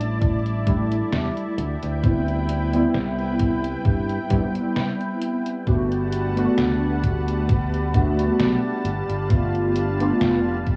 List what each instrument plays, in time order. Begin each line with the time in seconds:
Already playing: fingered electric bass A1, synth keys G3 A3 D4 E4, analog synth pad E4 D5 A5
0.01 closed hi-hat
0.22 kick, closed hi-hat
0.46 closed hi-hat
0.66 synth keys G3 A3 D4 E4, kick, closed hi-hat
0.92 closed hi-hat
1.13 fingered electric bass E2, snare, closed hi-hat
1.37 closed hi-hat
1.58 fingered electric bass D2, analog synth pad B4 G5, closed hi-hat
1.82 fingered electric bass D2, closed hi-hat
2.03 synth keys G3 B3 C4 E4, kick, closed hi-hat
2.28 closed hi-hat
2.49 closed hi-hat
2.72 synth keys G3 B3 C4 E4, closed hi-hat
2.94 fingered electric bass C2, snare, closed hi-hat
3.18 closed hi-hat
3.39 kick, closed hi-hat
3.64 closed hi-hat
3.85 fingered electric bass G2, kick, closed hi-hat
4.09 closed hi-hat
4.29 fingered electric bass G2, synth keys G3 B3 C4 E4, kick, closed hi-hat
4.55 muted fingered electric bass stroke, closed hi-hat
4.76 snare, closed hi-hat
5.01 closed hi-hat
5.21 closed hi-hat
5.46 closed hi-hat
5.67 fingered electric bass G1, analog synth pad G3 B4 F#5 A5, synth keys A3 B3 D4 F#4, kick, closed hi-hat
5.92 closed hi-hat
6.13 closed hi-hat
6.36 synth keys A3 B3 D4 F#4, closed hi-hat
6.58 fingered electric bass D2, snare, closed hi-hat
7.03 kick, closed hi-hat
7.28 closed hi-hat
7.49 kick, closed hi-hat
7.74 closed hi-hat
7.94 synth keys A3 B3 D4 F#4, kick, closed hi-hat
8.19 closed hi-hat
8.40 fingered electric bass B1, snare, closed hi-hat
8.85 fingered electric bass G1, analog synth pad B4 F5, closed hi-hat
9.10 fingered electric bass G1, closed hi-hat
9.30 synth keys A3 B3 D4 F4, kick, closed hi-hat
9.55 closed hi-hat
9.76 closed hi-hat
9.99 synth keys A3 B3 D4 F4, closed hi-hat
10.21 fingered electric bass F1, snare, closed hi-hat
10.67 kick, closed hi-hat